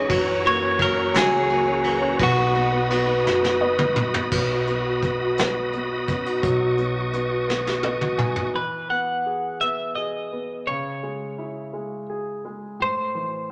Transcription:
0.00 0.12 E3 medium
0.00 0.17 G#3 medium
0.00 0.12 C#4 medium
0.00 0.12 D#4 soft
0.00 0.12 E4 medium
0.00 0.11 D#5 medium
0.08 1.11 F#2 medium
0.08 0.79 E3 medium
0.08 0.42 F#3 medium
0.08 1.14 C#4 medium
0.08 4.27 F#4 medium
0.08 2.17 C#5 medium
0.08 2.17 A#5 medium
0.08 kick loud
0.08 ride medium
0.27 0.61 C#4 medium
0.44 0.77 F#3 medium
0.44 1.48 A#3 medium
0.44 0.82 C#5 loud
0.44 ride soft
0.62 0.94 C#4 medium
0.79 1.83 E3 medium
0.79 1.12 F#3 medium
0.79 1.13 A#4 loud
0.79 kick medium
0.79 ride medium
0.96 1.30 C#4 medium
1.14 2.16 C#2 medium
1.14 1.48 F#3 medium
1.14 2.19 C#4 medium
1.14 2.23 G#4 medium
1.14 snare medium
1.14 ride medium
1.31 1.66 C#4 soft
1.50 1.82 F#3 medium
1.50 2.27 A#3 medium
1.50 ride soft
1.67 2.00 C#4 medium
1.84 2.19 E3 medium
1.84 2.18 F#3 soft
1.84 ride medium
2.02 2.19 C#4 medium
2.19 3.21 B1 loud
2.19 2.89 F#3 medium
2.19 2.36 B3 medium
2.19 3.24 D#4 medium
2.19 4.29 D#5 medium
2.19 4.30 B5 medium
2.19 4.29 D#6 medium
2.19 kick loud
2.19 ride medium
2.23 3.59 F#4 medium
2.38 2.54 B3 medium
2.55 3.60 B3 medium
2.55 2.71 B3 medium
2.55 ride soft
2.72 2.88 B3 medium
2.90 3.95 F#3 medium
2.90 3.06 B3 medium
2.90 snare soft
2.90 ride medium
3.07 3.40 B3 medium
3.25 4.28 F#1 medium
3.25 6.08 D#4 medium
3.25 4.28 F#4 medium
3.25 snare medium
3.41 3.60 B3 soft
3.41 snare soft
3.60 5.02 B3 medium
3.60 3.77 B3 medium
3.60 4.28 D#5 medium
3.78 3.95 B3 medium
3.78 mid tom medium
3.96 4.31 F#3 medium
3.96 4.13 B3 soft
3.96 mid tom loud
4.14 4.31 B3 soft
4.14 floor tom medium
4.31 6.39 B1 medium
4.31 4.66 F#3 medium
4.31 4.67 B3 medium
4.31 8.50 F#4 medium
4.31 8.50 D#5 soft
4.31 6.41 B5 soft
4.31 8.50 D#6 medium
4.31 kick loud
4.31 crash medium
4.51 4.85 F#4 soft
4.67 5.37 F#3 medium
4.67 5.02 B3 soft
4.67 closed hi-hat soft
4.86 5.20 F#4 soft
5.02 5.73 B3 medium
5.02 5.37 B3 soft
5.02 kick medium
5.02 closed hi-hat medium
5.21 5.55 F#4 soft
5.38 6.43 F#3 medium
5.38 5.72 B3 medium
5.38 snare medium
5.38 closed hi-hat medium
5.56 5.90 F#4 soft
5.73 7.13 B3 soft
5.73 6.07 B3 soft
5.73 closed hi-hat soft
5.91 6.24 F#4 soft
6.08 6.76 B3 soft
6.08 6.26 C#4 medium
6.08 kick medium
6.08 closed hi-hat medium
6.26 8.17 D#4 soft
6.26 6.59 F#4 soft
6.42 8.50 B1 medium
6.42 8.50 F#3 medium
6.42 6.78 F#3 medium
6.42 8.52 C#6 soft
6.42 kick medium
6.42 closed hi-hat medium
6.60 6.94 F#4 soft
6.78 7.47 F#3 medium
6.78 7.12 B3 soft
6.78 closed hi-hat soft
6.96 7.29 F#4 soft
7.13 7.47 B3 soft
7.13 7.83 B3 medium
7.13 closed hi-hat medium
7.31 7.64 F#4 soft
7.48 8.62 F#3 soft
7.48 7.83 B3 medium
7.48 snare soft
7.66 8.00 F#4 soft
7.66 snare soft
7.83 9.12 B3 soft
7.83 8.17 B3 soft
7.83 8.17 D#5 medium
7.83 high tom medium
8.01 8.35 F#4 soft
8.01 mid tom medium
8.18 8.53 B3 soft
8.18 8.61 D#4 medium
8.18 8.51 G#5 medium
8.18 mid tom medium
8.36 8.53 F#4 soft
8.36 floor tom medium
8.54 10.64 E3 soft
8.54 8.90 B4 medium
8.90 9.61 B3 soft
8.90 9.61 F#5 medium
9.26 9.96 G#4 soft
9.61 10.31 B3 soft
9.61 9.95 E5 medium
9.95 10.66 G#4 soft
9.95 10.70 D#5 medium
10.32 10.67 B3 soft
10.67 12.77 C#3 soft
10.67 12.06 C#5 medium
11.03 11.72 G#3 soft
11.38 12.76 E4 soft
11.73 12.43 G#3 soft
12.10 12.79 G#4 soft
12.45 12.80 G#3 soft
12.80 13.52 A2 soft
12.80 13.52 C5 medium
13.15 13.52 E3 soft

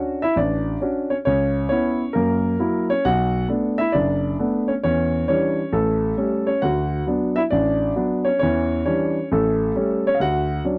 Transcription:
0.00 0.22 C#4 soft
0.00 0.22 D4 soft
0.00 0.22 F#4 soft
0.22 0.37 E4 medium
0.22 0.36 E5 medium
0.36 0.75 A1 medium
0.36 0.80 D4 medium
0.36 0.78 D5 medium
0.81 1.10 C#4 soft
0.81 1.12 D4 soft
0.81 1.12 F#4 medium
1.10 1.17 C#4 soft
1.10 1.15 C#5 medium
1.25 1.65 C#2 medium
1.25 1.68 C#4 medium
1.25 1.67 C#5 medium
1.69 2.02 B3 soft
1.69 2.12 C#4 medium
1.69 2.02 E4 soft
1.69 2.11 C#5 medium
2.13 2.54 F#2 medium
2.13 2.54 A#3 medium
2.13 2.84 A#4 medium
2.59 2.90 F#3 soft
2.59 2.91 A#3 soft
2.59 2.91 E4 soft
2.90 3.05 C#4 medium
2.90 3.04 C#5 medium
3.05 3.43 B1 medium
3.05 3.47 F#4 medium
3.05 3.46 F#5 medium
3.48 3.80 A3 soft
3.48 3.80 B3 soft
3.48 3.80 D4 soft
3.78 3.94 E4 medium
3.78 3.94 E5 medium
3.92 4.33 F#1 medium
3.92 4.36 D4 medium
3.92 4.34 D5 medium
4.39 4.70 A3 soft
4.39 4.70 B3 soft
4.39 4.70 D4 soft
4.68 4.74 C#4 medium
4.68 4.73 C#5 medium
4.83 5.22 E2 medium
4.83 5.25 C#4 medium
4.83 5.26 C#5 medium
5.28 5.59 E3 soft
5.28 5.59 G3 soft
5.28 5.70 C#4 medium
5.28 5.59 D4 soft
5.28 5.74 C#5 medium
5.73 6.11 A1 medium
5.73 6.16 A3 medium
5.73 6.49 A4 medium
6.17 6.48 G3 soft
6.17 6.48 A3 soft
6.17 6.47 C#4 soft
6.47 6.62 C#4 medium
6.47 6.61 C#5 medium
6.62 7.01 D2 medium
6.62 7.05 F#4 medium
6.62 7.03 F#5 medium
7.07 7.38 F#3 soft
7.07 7.38 B3 soft
7.07 7.38 D4 soft
7.36 7.43 E4 medium
7.36 7.41 E5 medium
7.51 7.90 A1 medium
7.51 7.93 D4 medium
7.51 7.92 D5 medium
7.96 8.27 F#3 soft
7.96 8.27 B3 soft
7.96 8.27 D4 medium
8.25 8.39 C#4 soft
8.25 8.38 C#5 medium
8.39 8.80 E2 medium
8.39 8.80 E3 medium
8.39 8.82 C#4 medium
8.39 8.84 C#5 medium
8.86 9.16 E3 soft
8.86 9.17 G3 soft
8.86 9.27 C#4 medium
8.86 9.17 D4 medium
8.86 9.27 C#5 medium
9.32 9.70 A1 medium
9.32 9.74 A3 medium
9.32 10.07 A4 medium
9.75 10.06 G3 medium
9.75 10.06 A3 soft
9.75 10.06 C#4 medium
10.07 10.16 C#4 medium
10.07 10.16 C#5 medium
10.15 10.19 F5 medium
10.20 10.58 D2 medium
10.20 10.62 F#4 medium
10.20 10.62 F#5 medium
10.64 10.78 F#3 soft
10.64 10.78 C#4 soft
10.64 10.78 D4 soft

